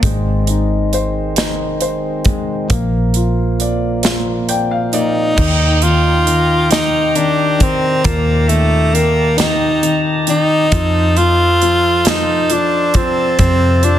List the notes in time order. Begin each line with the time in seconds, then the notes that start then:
0.03 G#1 D#3 G#3 C4, kick, closed hi-hat
0.47 D#4, closed hi-hat
0.93 C5, closed hi-hat
1.36 D#4, snare, closed hi-hat
1.81 C5, closed hi-hat
2.25 G#3, kick, closed hi-hat
2.69 A#1 A#2 F3 A#3, kick, closed hi-hat
3.14 F4, closed hi-hat
3.60 D5, closed hi-hat
4.03 F4, snare, closed hi-hat
4.49 D5 G5, closed hi-hat
4.71 F5
4.93 A#3 D#4 D5, closed hi-hat
5.36 D#2 D#3 G4 G5 A#5, kick, crash
5.82 D#3 F4, closed hi-hat
6.26 D#3, closed hi-hat
6.70 D#3 D#4, snare, closed hi-hat
7.15 D#3 D4, closed hi-hat
7.59 D#3 C4, kick, closed hi-hat
8.03 D#2 A#2 A#3 A5, kick, closed hi-hat
8.49 D#3 A3, closed hi-hat
8.93 D#3 A#3, closed hi-hat
9.37 D#3 D#4, snare, closed hi-hat
9.82 D#3, closed hi-hat
10.27 D#3 D#4, closed hi-hat
10.72 F2 F3 F4 A4 C5 A5, kick, closed hi-hat
11.17 F3 F4, closed hi-hat
11.62 F3, closed hi-hat
12.05 F3 D#4, snare, closed hi-hat
12.50 F3 D4, closed hi-hat
12.94 F3 C4, kick, closed hi-hat
13.39 F2 C3 C4, kick, closed hi-hat
13.83 F3 D4, closed hi-hat